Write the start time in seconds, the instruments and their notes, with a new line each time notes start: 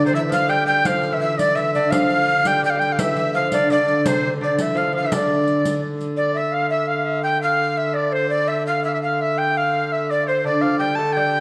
Already playing: hurdy-gurdy D3
0.04 lute C3, shawm C5, recorder C5
0.13 lute E3, shawm E5, recorder E5
0.29 lute F3, recorder F5, riq
0.33 shawm F5
0.49 lute G3, recorder G5, shawm G5, riq
0.66 lute G3, recorder G5, shawm G5, riq
0.85 lute F3, shawm F5, recorder F5, riq
1.03 riq
1.12 lute E3, shawm E5, recorder E5
1.20 lute E3, recorder E5, shawm E5
1.38 recorder D5, shawm D5, riq
1.55 lute E3, recorder E5, shawm E5, riq
1.75 lute D3, recorder D5, riq
1.91 hurdy-gurdy D3, lute F3, recorder F5, shawm F5, riq
2.10 riq
2.45 lute G3, recorder G5, shawm G5, riq
2.62 lute G3, shawm G5, recorder G5, riq
2.70 recorder F5
2.75 lute G3, shawm G5
2.80 recorder G5, riq
2.92 recorder F5
2.99 lute E3, shawm E5, recorder E5, riq
3.16 lute E3, riq
3.34 lute F3, recorder F5, shawm F5
3.52 lute D3, recorder D5, riq
3.70 lute D3, shawm D5, recorder D5, riq
3.88 riq
4.05 lute C3, shawm C5, recorder C5, riq
4.41 lute D3, shawm D5, recorder D5
4.59 lute E3, recorder E5, riq
4.75 lute F3, shawm F5, recorder F5, riq
4.93 lute F3, shawm F5
4.97 recorder F5
5.04 lute E3, shawm E5, recorder E5
5.12 lute D3, shawm D5, riq
5.16 recorder D5
5.48 riq
5.65 riq
6.01 riq
6.17 hurdy-gurdy D3, recorder D5, shawm D5
6.34 recorder E5, shawm E5
6.52 recorder F5, shawm F5
6.70 recorder E5, shawm E5
6.87 recorder F5, shawm F5
7.04 recorder E5
7.23 recorder G5, shawm G5
7.41 shawm F5, recorder F5
7.77 recorder E5, shawm E5
7.94 recorder D5, shawm D5
8.12 recorder C5, shawm C5
8.30 recorder D5, shawm D5
8.48 recorder E5, shawm E5
8.67 recorder F5, shawm F5
8.84 recorder E5, shawm E5
8.88 recorder F5
8.94 recorder E5, shawm E5
9.03 recorder F5, shawm F5
9.21 shawm E5, recorder E5
9.38 recorder G5, shawm G5
9.57 shawm F5, recorder F5
9.92 recorder E5, shawm E5
10.10 recorder D5, shawm D5
10.27 shawm C5, recorder C5
10.44 lute D3, hurdy-gurdy D3, recorder D5, shawm D5
10.61 lute F3, recorder F5
10.79 lute G3, recorder G5, shawm G5
10.95 lute A3, recorder A5, shawm A5
11.13 recorder G5
11.17 lute G3, shawm G5